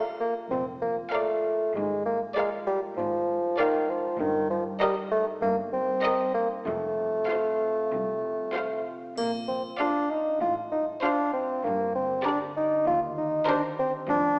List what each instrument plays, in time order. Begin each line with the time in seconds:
Already playing: harp A#2 F3 D4 F4 A#4, viola section A#4, violin section D5 F5
0.20 bassoon A#3, harp A#4
0.51 double bass section F1, cello section F2, harp A#2, bassoon C4
0.82 harp F3, bassoon A#3
1.12 bassoon A3, harp F4, viola section A#4, violin section D5 F5
1.44 harp A#4
1.75 double bass section G#1, harp G#2, cello section G#2, bassoon G#3
2.06 harp G#3, bassoon A#3
2.36 bassoon G#3, harp F4, viola section A#4, violin section D5 F5
2.67 bassoon G3, harp A#4
2.97 double bass section G#1, cello section G#2, harp G#2, bassoon F3
3.28 harp G#3
3.58 bassoon D#3, harp F4, viola section A#4, violin section D5 F5
3.89 bassoon F3, harp A#4
4.20 double bass section G1, harp G2, cello section G2, bassoon D#3
4.50 bassoon F3, harp G3
4.80 bassoon G3, harp D#4, viola section A#4, violin section D#5
5.12 bassoon A3, harp A#4
5.42 double bass section G1, harp G2, cello section G2, bassoon A#3
5.73 harp G3, bassoon C4
6.03 viola section A#4, violin section D#5
6.35 bassoon A#3, harp A#4
6.66 double bass section F1, harp F2, cello section F2, bassoon A3
6.97 harp C3
7.28 harp F4, viola section F4, violin section C5 F5
7.60 harp F5
7.91 cello section C2, double bass section C2, harp F2
8.23 harp C3
8.54 harp F4, viola section F4, violin section C5 F5
8.86 harp F5
9.18 double bass section A#1, harp A#2, cello section A#2, bassoon A#3, triangle
9.48 harp F3, bassoon C4
9.80 bassoon D4, harp F4, viola section F4, violin section D5 F5
10.10 bassoon D#4, harp F5
10.41 double bass section A1, harp A2, cello section A2, bassoon F4
10.72 harp A3, bassoon D#4
11.03 bassoon D4, harp F4, viola section F4, violin section C5 F5
11.33 bassoon C4, harp F5
11.64 double bass section G1, harp G2, cello section G2, bassoon A#3
11.95 harp D3, bassoon C4
12.25 bassoon D4, viola section G4, harp G4, violin section A#4 D5
12.57 bassoon D#4, harp D5
12.87 cello section D#2, double bass section D#2, harp D#3, bassoon F4
13.18 harp D#4, bassoon D#4
13.47 bassoon D4, viola section G4, harp G4, violin section A#4 C5
13.79 bassoon C4, harp C5
14.09 double bass section F1, cello section F2, harp F2, bassoon D4